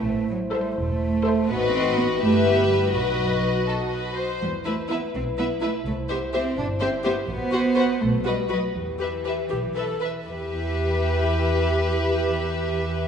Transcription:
<<
  \new Staff \with { instrumentName = "Violin section" } { \time 6/8 \key e \minor \tempo 4. = 83 r4 e''8 r4 e''8 | dis''4. e''4. | dis''2~ dis''8 r8 | r8 e''8 e''8 r8 e''8 e''8 |
r8 e''8 e''8 r8 e''8 e''8 | r8 fis''8 fis''8 r8 dis''8 dis''8 | r8 e''8 e''8 r8 e''8 e''8 | e''2.~ |
e''2. | }
  \new Staff \with { instrumentName = "Violin section" } { \time 6/8 \key e \minor r4 c''8 r4 c''8 | b'4. b'4. | b'4. a'8 b'8 c''8 | r8 b'8 b'8 r8 b'8 b'8 |
r8 c''8 c''8 r8 c''8 c''8 | r8 c''8 c''8 r8 b'8 b'8 | r8 b'8 b'8 r8 b'8 b'8 | b'2.~ |
b'2. | }
  \new Staff \with { instrumentName = "French horn section" } { \time 6/8 \key e \minor << { c''2. | b'2.~ | b'2~ b'8 r8 | b'2. |
c''2. | c''4. b'4. | b'2~ b'8 r8 | g'2.~ |
g'2. | } \\ { e'2. | dis'4. e'4. | dis'2~ dis'8 r8 | e'2.~ |
e'2. | fis'4. fis'4. | g'2~ g'8 r8 | e'2.~ |
e'2. | } >> }
  \new Staff \with { instrumentName = "Viola section" } { \time 6/8 \key e \minor r4 a'8 r4 a'8 | fis'4. g'4. | fis'2~ fis'8 r8 | r8 e'8 e'8 r8 e'8 e'8 |
r8 g'8 g'8 r8 g'8 g'8 | r8 fis'8 fis'8 r8 fis'8 fis'8 | r8 g'8 g'8 g'8 a'8 b'8 | g'2.~ |
g'2. | }
  \new Staff \with { instrumentName = "Cello section" } { \time 6/8 \key e \minor a8 fis8 g8 a4. | b8 c'8 b8 a8 b8 g8 | fis4. r4. | g8 a8 b8 c'8 b8 a8 |
a8 b8 c'8 d'8 c'8 b8 | b4. a8 g8 fis8 | e2~ e8 r8 | e2.~ |
e2. | }
  \new Staff \with { instrumentName = "Double bass section" } { \clef bass \time 6/8 \key e \minor a,,4. e,,4. | a,,4. g,,4. | b,,2~ b,,8 r8 | e,4. b,,4. |
c,4. g,,4. | a,,4. b,,4. | e,4. b,,4. | e,2.~ |
e,2. | }
>>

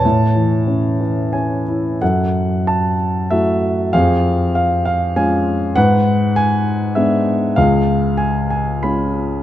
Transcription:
<<
  \new Staff \with { instrumentName = "Grand piano" } { \time 3/4 \key a \major \tempo 4 = 96 << { a''2 gis''4 | \key fis \minor fis''4 a''4 e''4 | eis''4 eis''8 eis''8 gis''4 | fis''4 gis''4 e''4 |
eis''4 gis''8 gis''8 b''4 | } \\ { cis''2~ cis''8 r8 | a'4. r4. | gis'4. r4. | b'4. r4. |
gis'4. r4. | } >> }
  \new Staff \with { instrumentName = "Grand piano" } { \time 3/4 \key a \major a,8 e8 cis'8 e8 cis'8 e'8 | \key fis \minor fis,2 <a e' fis'>4 | eis,2 <gis cis' eis'>4 | gis,2 <gis b d'>4 |
cis,2 <gis cis' eis'>4 | }
>>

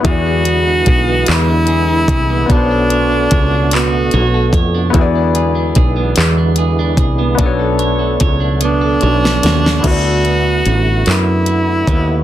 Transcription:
<<
  \new Staff \with { instrumentName = "Grand piano" } { \time 6/8 \key b \dorian \tempo 4. = 49 <b e' fis' gis' d''>2. | <b d' fis' a' c'' cis''>2. | <b e' fis' gis' d''>2. | <b d' fis' a' cis''>2. |
\key d \major <b e' fis' a' d''>2. | }
  \new Staff \with { instrumentName = "Tenor saxophone" } { \time 6/8 \key b \dorian fis'4. e'4. | d'4. fis'4 r8 | r2. | r4. d'4. |
\key d \major fis'4. e'4. | }
  \new Staff \with { instrumentName = "Clean electric guitar" } { \time 6/8 \key b \dorian e16 d'16 gis'16 d'16 gis'16 b16 e16 d'16 gis'16 d'16 gis'16 b16 | b16 a'16 cis''16 a'16 cis''16 d'16 b16 a'16 cis''16 a'16 cis''16 d'16 | e16 d'16 gis'16 d'16 gis'16 b16 e16 d'16 gis'16 d'16 gis'16 b16 | b16 a'16 cis''16 a'16 cis''16 d'16 b16 a'16 cis''16 a'16 cis''16 d'16 |
\key d \major d8 b8 e'8 b8 e'8 b8 | }
  \new Staff \with { instrumentName = "Tonewheel organ" } { \time 6/8 \key b \dorian << { <d e gis e'>2. | <b, a d' fis'>2. | <d e gis e'>2. | <b, fis a d'>2. |
\key d \major <d a e' fis'>2. | } \\ { b2. | b2.~ | b2.~ | b2. |
b2. | } >> }
  \new Staff \with { instrumentName = "Fretless electric bass" } { \clef bass \time 6/8 \key b \dorian e,4 b,,8 e,4 c,8 | b,,4 cis,4 b,,8 eis,8 | e,4 b,,8 e,4 c,8 | b,,4 cis,4 b,,8 dis,8 |
\key d \major d,4 a,,8 fis,4 dis,8 | }
  \new DrumStaff \with { instrumentName = "Drums" } \drummode { \time 6/8 <hh bd>8 hh8 <hh bd>8 <hc hh>8 hh8 <hh bd>8 | <hh bd>8 hh8 <hh bd>8 <hc hh>8 hh8 <hh bd>8 | <hh bd>8 hh8 <hh bd>8 <hc hh>8 hh8 <hh bd>8 | <hh bd>8 hh8 <hh bd>8 hh8 hh16 sn16 <hh sn>16 sn16 |
<cymc hh bd>8 hh8 hh8 <hc hh>8 hh8 <hh bd>8 | }
>>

